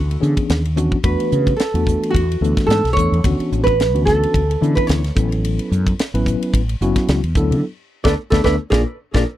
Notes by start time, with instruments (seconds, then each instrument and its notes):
Already playing: fretless electric bass D2, nylon-string guitar F#4
0.11 ride
0.20 fretless electric bass D3, tine electric piano E3 B3 C#4 D4 G#4, hi-hat pedal
0.37 kick, ride
0.49 fretless electric bass D#2, snare, ride
0.65 ride
0.76 tine electric piano E3 B3 C#4 D4 F#4, hi-hat pedal, high tom
0.92 kick
1.04 fretless electric bass E2, tine electric piano E3 A3 B3 D4 F#4, nylon-string guitar B4, kick, ride
1.20 ride
1.32 fretless electric bass C#3, hi-hat pedal
1.47 kick, ride
1.57 nylon-string guitar A4, snare, ride
1.74 fretless electric bass E2, tine electric piano E3 A3 B3 D4 F#4, ride
1.87 kick, hi-hat pedal
2.03 ride
2.10 nylon-string guitar F#4
2.15 fretless electric bass E2, kick, ride
2.31 ride
2.41 fretless electric bass D2, tine electric piano E3 A3 B3 D4 A4, hi-hat pedal
2.57 kick, snare, ride
2.67 fretless electric bass G#2, nylon-string guitar A4, ride
2.71 snare
2.84 fretless electric bass B1, snare, ride
2.93 fretless electric bass E2, nylon-string guitar C#5, kick
2.98 tine electric piano E3 A3 B3 D4 A4, hi-hat pedal
3.12 fretless electric bass E2, ride
3.24 fretless electric bass D2, tine electric piano E3 B3 C#4 D4 F#4, kick, ride
3.40 muted fretless electric bass stroke, ride
3.52 fretless electric bass A1, hi-hat pedal
3.64 nylon-string guitar B4, kick
3.68 ride
3.80 snare, ride
3.94 fretless electric bass D2, tine electric piano E3 B3 C#4 D4 F#4, ride
4.05 nylon-string guitar A4, kick, snare, hi-hat pedal
4.23 ride
4.34 fretless electric bass D2, kick, ride
4.51 ride
4.61 fretless electric bass D3, tine electric piano E3 B3 C#4 D4 E4, hi-hat pedal
4.75 nylon-string guitar B4, kick, ride
4.87 fretless electric bass D2, nylon-string guitar C#5, snare, ride
5.04 snare, ride
5.15 fretless electric bass A1, tine electric piano F#3 B3 C#4 E4 A4, kick, hi-hat pedal
5.32 ride
5.44 ride
5.59 ride
5.71 fretless electric bass F#2, hi-hat pedal
5.87 kick, ride
5.99 snare, ride
6.14 fretless electric bass A1, tine electric piano F#3 B3 C#4 E4 B4, ride
6.26 kick, hi-hat pedal
6.42 ride
6.53 fretless electric bass A1, kick, ride
6.69 ride
6.81 fretless electric bass F#1, tine electric piano F#3 B3 C#4 E4 F#4, hi-hat pedal
6.96 kick, snare, ride
7.08 fretless electric bass C#2, snare, ride
7.23 fretless electric bass E2, ride
7.35 fretless electric bass D2, tine electric piano F#3 B3 D4 E4 A4, kick, hi-hat pedal
7.51 fretless electric bass D3, ride
8.04 fretless electric bass D2, tine electric piano A3 B3 D4, nylon-string guitar A4 B4 D5, kick, snare
8.30 fretless electric bass D2, tine electric piano A3 B3 D4, nylon-string guitar A4 B4 D5, kick, snare
8.44 fretless electric bass D2, tine electric piano A3 B3 D4, nylon-string guitar A4 B4 D5, kick, snare
8.70 fretless electric bass A#1, tine electric piano A#3 D4 F4, nylon-string guitar G#4 A#4 D5, kick, snare
9.14 fretless electric bass A#1, tine electric piano A#3 D4 F4, nylon-string guitar G#4 A#4 D5, kick, snare